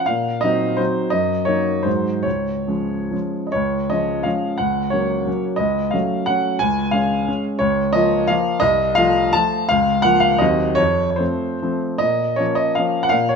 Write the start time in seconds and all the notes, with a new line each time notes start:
0.06 A#2 F5
0.41 F#3 C4 D#4 D#5
0.77 F#3 C4 D#4 C5
1.10 F#2 D#5
1.45 F#3 A#3 D#4 C#5
1.83 G#2 F#3 G#3 D#4 C5
2.23 C#2 C#5
2.67 F3 G#3 C#4
3.11 F3 G#3 C#4
3.47 D#5
3.52 C#2 C#5
3.90 F3 G#3 C#4 D#5
4.23 F3 G#3 C#4 F5
4.58 C#2 F#5
4.90 F#3 A#3 C#4 C#5
5.27 F#3 A#3 C#4
5.56 C#2 D#5
5.91 F#3 A3 C#4 F5
6.26 F#3 A3 C#4 F#5
6.59 C#2 G#5
6.91 G#3 C#4 F5
7.28 G#3 C#4
7.59 C#2 C#5
7.93 F3 A#3 F4 D#5
8.27 F3 A#3 F4 F5
8.60 C2 D#5
8.95 F3 A3 F4 F5
9.33 F3 A3 F4 A5
9.69 C#2 F5
10.02 F3 A#3 F4 F#5
10.20 F5
10.38 D#2 F#3 C4 D#5
10.75 F2 C#5
11.10 C#5
11.16 F3 A3 C4 C5
11.62 F3 A3 C4
11.98 A#2 D#5
12.36 F3 A#3 C#4 C#5
12.55 D#5
12.75 F3 A#3 C#4 F5
13.03 F#5
13.09 A#2 F5
13.29 C#5